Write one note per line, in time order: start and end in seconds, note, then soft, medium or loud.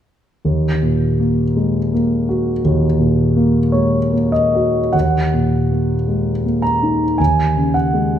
0.45 2.60 D#2 soft
0.82 1.42 A#2 soft
1.20 1.79 A#3 soft
1.56 1.93 G#3 soft
1.94 2.51 A#3 soft
2.29 2.85 F#4 soft
2.65 4.90 D#2 soft
2.99 3.58 A#2 soft
3.37 3.97 A#3 soft
3.72 4.13 G#3 soft
3.72 4.33 C#5 soft
4.13 4.78 A#3 soft
4.32 4.93 D#5 soft
4.55 4.94 F#4 soft
4.93 7.15 D#2 soft
4.93 6.63 F#5 medium
5.34 5.93 A#2 soft
5.71 6.30 A#3 soft
6.08 6.45 G#3 soft
6.46 7.05 A#3 soft
6.62 7.19 A#5 soft
6.83 7.20 D#4 soft
7.18 8.19 D#2 soft
7.18 7.74 G#5 medium
7.57 8.15 C#3 soft
7.74 8.19 F#5 soft
7.94 8.19 G#3 soft